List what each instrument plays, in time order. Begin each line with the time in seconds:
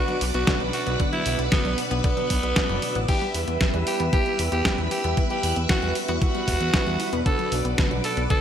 Already playing: alto saxophone F#4, string machine B4 D5 F#5 D6
0.08 analog polysynth B2 F#3 B3 D4 B4, synth arpeggio sound F#3, closed hi-hat
0.21 analog synth bass B1, open hi-hat
0.34 analog synth bass B1, synth arpeggio sound B3, alto saxophone F#4, closed hi-hat
0.47 analog polysynth B2 F#3 B3 D4 B4, synth arpeggio sound D3, kick, snare, closed hi-hat
0.60 analog synth bass B1, synth arpeggio sound F#3, closed hi-hat
0.73 alto saxophone F#4, open hi-hat
0.87 analog synth bass B1, analog polysynth B2 F#3 B3 D4 B4, synth arpeggio sound B3, closed hi-hat
1.00 synth arpeggio sound D3, string machine E6, kick, closed hi-hat
1.13 synth arpeggio sound F#3, alto saxophone E4, closed hi-hat
1.26 analog synth bass B1, analog polysynth B2 F#3 B3 D4 B4, open hi-hat
1.39 analog synth bass B1, synth arpeggio sound B3, closed hi-hat
1.52 synth arpeggio sound D3, alto saxophone B3, kick, snare, closed hi-hat
1.65 analog synth bass B1, analog polysynth B2 F#3 B3 D4 B4, synth arpeggio sound F#3, closed hi-hat
1.78 open hi-hat
1.91 analog synth bass B1, synth arpeggio sound B3, alto saxophone B3, closed hi-hat
2.04 synth arpeggio sound D3, kick, closed hi-hat
2.17 analog polysynth B2 F#3 B3 D4 B4, synth arpeggio sound F#3, closed hi-hat
2.30 analog synth bass B1, kick, open hi-hat
2.43 analog synth bass B1, synth arpeggio sound B3, closed hi-hat
2.56 analog polysynth B2 F#3 B3 D4 D5, synth arpeggio sound D3, kick, snare, closed hi-hat
2.69 analog synth bass F#1, analog polysynth B2 F#3 B3 D4 D5, synth arpeggio sound F#3, closed hi-hat
2.82 open hi-hat
2.95 analog synth bass A1, synth arpeggio sound B3, closed hi-hat
3.08 synth arpeggio sound E3, alto saxophone G4, string machine E5 B5, kick, closed hi-hat, crash
3.21 synth arpeggio sound G3, closed hi-hat
3.35 analog synth bass E2, analog polysynth G3 B3 E4 B4, open hi-hat
3.48 analog synth bass E2, synth arpeggio sound B3, closed hi-hat
3.61 synth arpeggio sound E3, kick, snare, closed hi-hat
3.74 analog synth bass E2, synth arpeggio sound G3, analog polysynth G3 B3 E4 B4, closed hi-hat
3.87 alto saxophone G4, open hi-hat
4.00 analog synth bass E2, synth arpeggio sound B3, closed hi-hat
4.13 synth arpeggio sound E3, alto saxophone G4, kick, closed hi-hat
4.26 synth arpeggio sound G3, analog polysynth G3 B3 E4 B4, closed hi-hat
4.39 analog synth bass E2, open hi-hat
4.52 analog synth bass E2, synth arpeggio sound B3, alto saxophone G4, closed hi-hat
4.65 analog polysynth G3 B3 E4 B4, kick, snare, closed hi-hat
4.78 analog synth bass E2, synth arpeggio sound G3, closed hi-hat
4.91 synth arpeggio sound E3, alto saxophone G4, open hi-hat
5.04 analog synth bass E2, analog polysynth G3 B3 E4 B4, synth arpeggio sound B3, closed hi-hat
5.17 synth arpeggio sound E3, string machine F#6, kick, closed hi-hat
5.30 synth arpeggio sound G3, alto saxophone G4, closed hi-hat
5.43 analog synth bass E2, analog polysynth G3 B3 E4 B4, open hi-hat
5.56 analog synth bass E2, synth arpeggio sound B3, closed hi-hat
5.69 synth arpeggio sound E3, alto saxophone F#4, kick, snare, closed hi-hat
5.82 analog synth bass E2, analog polysynth G3 B3 E4 B4, synth arpeggio sound G3, closed hi-hat
5.95 open hi-hat
6.08 analog synth bass E2, synth arpeggio sound B3, alto saxophone F#4, closed hi-hat
6.22 synth arpeggio sound E3, kick, closed hi-hat
6.35 synth arpeggio sound G3, analog polysynth G3 B3 E4 B4, closed hi-hat
6.48 analog synth bass E1, kick, open hi-hat
6.61 analog synth bass E2, synth arpeggio sound B3, closed hi-hat
6.74 analog polysynth G3 B3 E4 B4, kick, snare, closed hi-hat
6.87 analog synth bass E2, synth arpeggio sound G3, closed hi-hat
7.00 synth arpeggio sound E3, open hi-hat
7.13 analog synth bass E2, analog polysynth B2 F#3 B3 D4 B4, synth arpeggio sound B3, closed hi-hat
7.26 synth arpeggio sound D3, alto saxophone A4, string machine B4 D5 F#5 D6, kick, closed hi-hat
7.39 synth arpeggio sound F#3, closed hi-hat
7.52 analog synth bass B1, analog polysynth B2 F#3 B3 D4 B4, open hi-hat
7.65 analog synth bass B1, synth arpeggio sound B3, closed hi-hat
7.78 synth arpeggio sound D3, kick, snare, closed hi-hat
7.91 analog synth bass B1, analog polysynth B2 F#3 B3 D4 B4, synth arpeggio sound F#3, closed hi-hat
8.04 alto saxophone A4, open hi-hat
8.17 analog synth bass B1, synth arpeggio sound B3, closed hi-hat
8.30 synth arpeggio sound D3, alto saxophone A4, kick, closed hi-hat